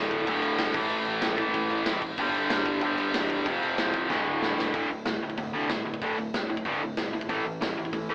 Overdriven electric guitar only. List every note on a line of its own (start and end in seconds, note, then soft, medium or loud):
0.00 0.26 D2 medium
0.00 0.27 A2 medium
0.00 0.27 D3 medium
0.27 0.74 D2 medium
0.27 0.73 A2 medium
0.27 0.76 D3 medium
0.74 1.37 A2 loud
0.74 1.38 E3 loud
0.74 1.35 A3 medium
1.37 2.02 A2 medium
1.37 2.02 E3 loud
1.37 2.01 A3 medium
2.18 2.81 G2 medium
2.18 2.82 D3 medium
2.18 2.83 G3 medium
2.82 3.45 G2 medium
2.82 3.46 D3 medium
2.82 3.47 G3 medium
3.46 4.09 F2 medium
3.46 4.10 C3 medium
3.46 4.11 F3 loud
4.09 4.72 D2 loud
4.09 4.73 A2 loud
4.09 4.74 D3 loud
4.74 4.89 D2 medium
4.74 4.89 A2 medium
4.74 4.89 D3 medium
4.90 5.04 D2 medium
4.90 5.05 A2 medium
5.06 5.20 D2 medium
5.06 5.20 A2 medium
5.23 5.37 D2 medium
5.23 5.37 A2 medium
5.38 5.52 D2 medium
5.38 5.52 A2 medium
5.54 5.69 D2 medium
5.54 5.69 A2 medium
5.54 5.69 D3 medium
5.70 5.84 D2 medium
5.70 5.84 A2 medium
5.85 6.00 D2 medium
5.85 6.00 A2 medium
6.02 6.17 D2 medium
6.02 6.17 A2 medium
6.02 6.17 D3 medium
6.18 6.32 D2 medium
6.18 6.32 A2 medium
6.34 6.48 D2 medium
6.34 6.48 A2 medium
6.49 6.64 D2 medium
6.49 6.64 A2 medium
6.65 6.80 D2 loud
6.65 6.81 A2 loud
6.65 6.81 D3 loud
6.83 6.96 D2 medium
6.83 6.96 A2 medium
6.98 7.12 D2 medium
6.98 7.12 A2 medium
7.13 7.28 D2 medium
7.13 7.28 A2 medium
7.29 7.44 A2 medium
7.29 7.44 E3 medium
7.29 7.45 A3 loud
7.45 7.60 A2 medium
7.45 7.60 E3 medium
7.61 7.76 A2 medium
7.61 7.76 E3 medium
7.77 7.92 A2 medium
7.77 7.92 E3 medium
7.93 8.07 A2 medium
7.93 8.08 E3 loud
8.09 8.15 A2 medium
8.09 8.15 E3 medium
8.09 8.15 A3 medium